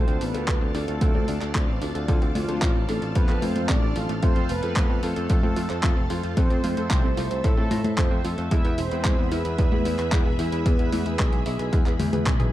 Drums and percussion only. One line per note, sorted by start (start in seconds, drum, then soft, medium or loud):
0.08 closed hi-hat soft
0.21 open hi-hat loud
0.34 closed hi-hat medium
0.48 kick loud
0.48 clap loud
0.48 closed hi-hat medium
0.75 open hi-hat loud
0.88 closed hi-hat medium
1.01 kick loud
1.01 closed hi-hat medium
1.15 high conga medium
1.28 open hi-hat loud
1.41 clap soft
1.41 closed hi-hat medium
1.55 kick loud
1.55 clap loud
1.55 closed hi-hat medium
1.82 open hi-hat loud
1.95 closed hi-hat medium
2.08 kick loud
2.08 closed hi-hat medium
2.22 closed hi-hat soft
2.35 open hi-hat loud
2.35 high conga medium
2.49 closed hi-hat medium
2.62 kick loud
2.62 clap loud
2.62 closed hi-hat medium
2.89 open hi-hat loud
3.02 closed hi-hat medium
3.15 kick loud
3.15 closed hi-hat medium
3.29 clap soft
3.29 closed hi-hat soft
3.42 open hi-hat loud
3.42 high conga medium
3.56 closed hi-hat medium
3.56 high conga medium
3.69 kick loud
3.69 clap loud
3.69 closed hi-hat medium
3.96 open hi-hat loud
4.09 closed hi-hat medium
4.23 kick loud
4.23 closed hi-hat medium
4.36 closed hi-hat soft
4.49 open hi-hat loud
4.63 closed hi-hat medium
4.76 kick loud
4.76 clap loud
4.76 closed hi-hat medium
5.03 open hi-hat loud
5.16 closed hi-hat medium
5.30 kick loud
5.30 closed hi-hat medium
5.43 high conga medium
5.56 open hi-hat loud
5.70 clap soft
5.70 closed hi-hat medium
5.83 kick loud
5.83 clap loud
5.83 closed hi-hat medium
6.10 open hi-hat loud
6.23 closed hi-hat soft
6.37 kick loud
6.37 closed hi-hat medium
6.50 closed hi-hat soft
6.64 open hi-hat loud
6.64 high conga medium
6.77 closed hi-hat medium
6.91 kick loud
6.91 clap loud
6.91 closed hi-hat medium
7.17 open hi-hat loud
7.31 closed hi-hat soft
7.44 kick loud
7.44 closed hi-hat medium
7.71 open hi-hat loud
7.71 high conga medium
7.84 closed hi-hat medium
7.84 high conga medium
7.98 kick loud
7.98 clap loud
7.98 closed hi-hat medium
8.25 open hi-hat loud
8.38 closed hi-hat soft
8.51 kick loud
8.51 closed hi-hat medium
8.65 closed hi-hat soft
8.78 open hi-hat loud
8.91 closed hi-hat medium
9.05 kick loud
9.05 clap loud
9.05 closed hi-hat medium
9.32 open hi-hat loud
9.45 closed hi-hat medium
9.58 kick loud
9.58 closed hi-hat medium
9.72 high conga medium
9.85 open hi-hat loud
9.99 clap soft
9.99 closed hi-hat medium
10.12 kick loud
10.12 clap loud
10.12 closed hi-hat medium
10.39 open hi-hat loud
10.52 closed hi-hat medium
10.66 kick loud
10.66 closed hi-hat medium
10.79 closed hi-hat soft
10.93 open hi-hat loud
10.93 high conga medium
11.06 closed hi-hat medium
11.19 kick loud
11.19 clap loud
11.19 closed hi-hat medium
11.33 closed hi-hat soft
11.46 open hi-hat loud
11.59 closed hi-hat medium
11.73 kick loud
11.73 closed hi-hat medium
11.86 clap soft
11.86 closed hi-hat soft
12.00 open hi-hat loud
12.00 high tom medium
12.00 high conga medium
12.13 closed hi-hat medium
12.13 high tom medium
12.13 high conga medium
12.26 kick loud
12.26 clap loud
12.26 closed hi-hat medium
12.26 mid tom medium
12.40 closed hi-hat soft
12.40 mid tom medium